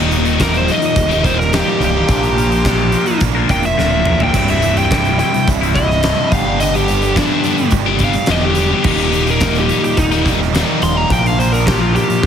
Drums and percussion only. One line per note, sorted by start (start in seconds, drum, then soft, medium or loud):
0.11 closed hi-hat medium
0.25 closed hi-hat soft
0.40 kick medium
0.40 snare loud
0.40 closed hi-hat loud
0.54 closed hi-hat soft
0.68 closed hi-hat medium
0.82 closed hi-hat soft
0.96 kick loud
0.96 closed hi-hat loud
1.11 closed hi-hat soft
1.24 kick medium
1.24 closed hi-hat medium
1.41 snare soft
1.53 snare loud
1.53 closed hi-hat loud
1.81 closed hi-hat medium
2.09 kick loud
2.09 closed hi-hat loud
2.23 closed hi-hat medium
2.38 closed hi-hat medium
2.52 closed hi-hat medium
2.65 kick medium
2.65 snare loud
2.65 closed hi-hat loud
2.92 closed hi-hat medium
3.06 closed hi-hat soft
3.20 kick loud
3.20 closed hi-hat loud
3.49 kick medium
3.49 closed hi-hat medium
3.63 closed hi-hat medium
3.79 snare medium
4.05 mid tom loud
4.20 floor tom loud
4.34 kick loud
4.34 closed hi-hat loud
4.34 crash loud
4.48 closed hi-hat medium
4.62 closed hi-hat medium
4.77 closed hi-hat medium
4.91 kick medium
4.91 snare loud
4.91 closed hi-hat loud
5.05 closed hi-hat medium
5.19 closed hi-hat medium
5.34 closed hi-hat soft
5.48 kick loud
5.48 closed hi-hat loud
5.63 closed hi-hat medium
5.76 kick medium
5.76 closed hi-hat medium
5.91 snare soft
6.03 snare loud
6.03 closed hi-hat loud
6.32 kick loud
6.32 closed hi-hat medium
6.60 closed hi-hat loud
6.75 closed hi-hat soft
6.88 closed hi-hat medium
7.02 closed hi-hat soft
7.16 kick medium
7.16 snare loud
7.16 closed hi-hat loud
7.44 closed hi-hat medium
7.58 closed hi-hat soft
7.71 kick loud
7.71 closed hi-hat loud
7.99 kick medium
7.99 closed hi-hat medium
8.13 snare soft
8.13 closed hi-hat medium
8.26 snare loud
8.26 closed hi-hat loud
8.55 closed hi-hat medium
8.84 kick loud
8.84 crash loud
8.98 closed hi-hat medium
9.13 closed hi-hat medium
9.27 closed hi-hat medium
9.41 kick medium
9.41 snare loud
9.41 closed hi-hat loud
9.55 closed hi-hat medium
9.69 closed hi-hat medium
9.84 closed hi-hat medium
9.97 kick loud
9.97 closed hi-hat loud
10.12 closed hi-hat medium
10.26 kick medium
10.26 closed hi-hat medium
10.42 snare soft
10.55 snare loud
10.55 closed hi-hat loud
10.82 closed hi-hat medium
11.10 kick loud
11.10 closed hi-hat loud
11.26 closed hi-hat medium
11.40 closed hi-hat medium
11.54 closed hi-hat soft
11.67 kick medium
11.67 snare loud
11.67 closed hi-hat loud
11.96 closed hi-hat medium
12.10 closed hi-hat soft